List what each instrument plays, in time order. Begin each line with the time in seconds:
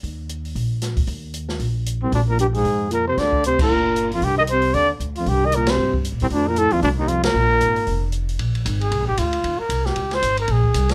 0.03 upright bass D#2, kick, open hi-hat
0.29 closed hi-hat
0.45 open hi-hat
0.55 upright bass A#1, kick, open hi-hat
0.82 snare, closed hi-hat
0.97 upright bass E2, kick, open hi-hat
1.07 upright bass D#2, kick, open hi-hat
1.34 closed hi-hat
1.49 snare
1.59 upright bass A#1, kick, open hi-hat
1.86 closed hi-hat
2.03 baritone saxophone C2, trumpet C4
2.12 upright bass A#1, baritone saxophone D2, trumpet D4, kick, open hi-hat
2.29 baritone saxophone A#2, trumpet A#4
2.39 baritone saxophone G2, trumpet G4, closed hi-hat
2.54 baritone saxophone G#2, trumpet G#4, open hi-hat
2.65 upright bass F2, kick, open hi-hat
2.90 baritone saxophone A#2, trumpet A#4, closed hi-hat
3.07 baritone saxophone C3, trumpet C5
3.17 upright bass D2, baritone saxophone D3, trumpet D5, kick, snare, open hi-hat
3.33 kick
3.44 baritone saxophone C3, trumpet C5, closed hi-hat
3.59 baritone saxophone A#2, trumpet A#4, kick, crash
3.70 upright bass G1
3.96 closed hi-hat
4.11 baritone saxophone F2, trumpet F4, open hi-hat
4.22 upright bass C2, baritone saxophone G2, trumpet G4, kick, open hi-hat
4.38 baritone saxophone D#3, trumpet D#5
4.47 trumpet C5, closed hi-hat
4.52 baritone saxophone C3
4.62 open hi-hat
4.74 upright bass D#2, baritone saxophone D3, trumpet D5, kick, open hi-hat
5.00 upright bass D2, closed hi-hat
5.15 baritone saxophone F2, trumpet F4, open hi-hat
5.26 upright bass C2, baritone saxophone G2, trumpet G4, kick, open hi-hat
5.45 baritone saxophone D#3, trumpet D#5
5.52 trumpet A#4, closed hi-hat
5.56 baritone saxophone A#2
5.67 trumpet C5, snare, ride
5.71 baritone saxophone C3
5.77 upright bass G2
5.93 kick
6.05 closed hi-hat
6.12 upright bass A#2
6.20 baritone saxophone C2, upright bass E2, trumpet C4, open hi-hat
6.30 baritone saxophone D2, upright bass F2, trumpet D4, kick, open hi-hat
6.48 baritone saxophone A#2, trumpet A#4
6.56 baritone saxophone A2, trumpet A4, closed hi-hat
6.70 upright bass D#2, baritone saxophone F2, trumpet F4, open hi-hat
6.82 upright bass C2, baritone saxophone D2, trumpet D4, kick, open hi-hat
6.99 baritone saxophone D#2, trumpet D#4
7.08 baritone saxophone F2, trumpet F4, closed hi-hat
7.23 baritone saxophone A#2, trumpet A#4, snare, ride
7.34 upright bass A#1
7.61 upright bass G#1, closed hi-hat
7.76 open hi-hat
7.87 upright bass F1, kick, open hi-hat
8.12 closed hi-hat
8.29 open hi-hat
8.39 upright bass A#1, kick, ride
8.55 ride
8.65 upright bass G#1, kick, hi-hat pedal, ride
8.81 trumpet G#4, ride
8.91 upright bass C2, kick, ride
9.00 upright bass A#1
9.08 upright bass G#1, trumpet G4
9.17 upright bass D2, trumpet F4, kick, hi-hat pedal, ride
9.33 ride
9.44 upright bass D#2, kick, ride
9.59 trumpet A#4, muted upright bass stroke
9.69 upright bass C2, kick, hi-hat pedal, ride
9.86 trumpet G4, snare
9.96 upright bass C#2, kick, ride
10.11 trumpet C5, snare, ride
10.22 upright bass G#1, kick, hi-hat pedal, ride
10.37 trumpet A#4, ride
10.48 upright bass A#1, trumpet G#4, kick, ride
10.64 kick
10.74 upright bass C2, kick, hi-hat pedal, ride
10.89 snare, ride